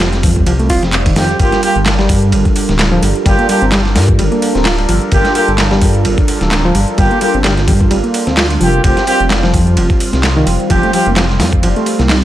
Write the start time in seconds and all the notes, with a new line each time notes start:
Already playing: F1 G3 C4 F4
0.00 F3, snare, clap, closed hi-hat, ride
0.13 snare, closed hi-hat
0.23 F2 F3, kick, open hi-hat, ride
0.36 kick, closed hi-hat
0.46 C2 F3, closed hi-hat, ride
0.59 A3, closed hi-hat
0.70 F4, kick, open hi-hat, ride
0.82 F1, snare, closed hi-hat
0.93 clap, closed hi-hat, ride
1.06 D#3, kick, closed hi-hat, ride
1.16 F2 D#3 C4 F4 G4, snare, open hi-hat, ride
1.29 closed hi-hat
1.39 G1 A#3 D4 F4 G4 A4 A#4, kick, closed hi-hat, ride
1.52 snare, closed hi-hat
1.63 A#3 F4 G4, open hi-hat, ride
1.76 G1, closed hi-hat
1.86 snare, clap, closed hi-hat, ride
1.99 G3, snare
2.09 G2, kick, open hi-hat, ride
2.22 closed hi-hat
2.32 G1, closed hi-hat, ride
2.45 kick, closed hi-hat
2.56 open hi-hat, ride
2.69 D1, snare, closed hi-hat
2.79 snare, clap, closed hi-hat, ride
2.92 F3
3.02 G1 G3, open hi-hat, ride
3.16 closed hi-hat
3.25 G1 G3 A#3 F4 G4, kick, closed hi-hat, ride
3.39 A#3, closed hi-hat
3.49 G3 A#3 F4 G4, open hi-hat, ride
3.62 G1 C4, closed hi-hat
3.72 G3, snare, clap, closed hi-hat, ride
3.85 snare
3.95 G2 G3, snare, open hi-hat, ride
4.08 kick
4.19 G1 G3, closed hi-hat, ride
4.32 A#3, closed hi-hat
4.42 open hi-hat, ride
4.55 D1 C4, snare, closed hi-hat
4.65 F4, snare, clap, closed hi-hat, open hi-hat
4.78 ride
4.89 G1 F3, open hi-hat, ride
5.02 closed hi-hat
5.12 G1 A#3 F4 G4, kick, closed hi-hat, ride
5.25 snare, closed hi-hat
5.35 A#3 F4 G4, open hi-hat, ride
5.48 G1, closed hi-hat
5.58 snare, clap, closed hi-hat, ride
5.71 G3, snare
5.81 G2, kick, open hi-hat, ride
5.95 closed hi-hat
6.05 G1, closed hi-hat, ride
6.18 kick, closed hi-hat
6.28 open hi-hat, ride
6.41 D1, snare, closed hi-hat
6.51 snare, clap, closed hi-hat, ride
6.65 F3
6.75 G1 G3, open hi-hat, ride
6.88 closed hi-hat
6.98 G1 G3 A#3 F4 G4, kick, closed hi-hat, ride
7.11 A#3, closed hi-hat
7.21 G3 A#3 F4 G4, open hi-hat, ride
7.34 G1 C4, closed hi-hat
7.44 G3, snare, clap, closed hi-hat, ride
7.57 snare, closed hi-hat
7.68 G2 G3, kick, open hi-hat, ride
7.81 kick
7.91 G1 G3, closed hi-hat, ride
8.04 A#3, closed hi-hat
8.14 open hi-hat, ride
8.27 D2 C4, snare, closed hi-hat
8.37 F4, snare, clap, closed hi-hat, open hi-hat
8.50 closed hi-hat, ride
8.60 F1 F3 A#3 F4 G4, open hi-hat
8.74 closed hi-hat
8.84 F1 G3 C4 F4 G4, kick, closed hi-hat, ride
8.97 snare, closed hi-hat
9.07 C4 F4 G4, open hi-hat, ride
9.20 F1, closed hi-hat
9.30 snare, clap, closed hi-hat, ride
9.43 F3, snare
9.54 F2, kick, open hi-hat, ride
9.67 closed hi-hat
9.77 F1, closed hi-hat, ride
9.90 kick, closed hi-hat
10.00 open hi-hat, ride
10.13 C2, snare, closed hi-hat
10.23 snare, clap, closed hi-hat, ride
10.36 D#3
10.47 F1 F3, open hi-hat, ride
10.60 closed hi-hat
10.70 F1 F3 C4 F4 G4, kick, closed hi-hat, ride
10.83 A3, closed hi-hat
10.93 F3 C4 F4 G4, open hi-hat, ride
11.06 F1 A#3, closed hi-hat
11.16 F3, snare, clap, closed hi-hat, ride
11.29 snare
11.40 F2 F3, snare, open hi-hat, ride
11.53 kick, closed hi-hat
11.63 F1 F3, closed hi-hat, ride
11.76 A3, closed hi-hat
11.86 open hi-hat, ride
11.99 C2 A#3, snare, closed hi-hat
12.09 D#4, snare, clap, closed hi-hat, open hi-hat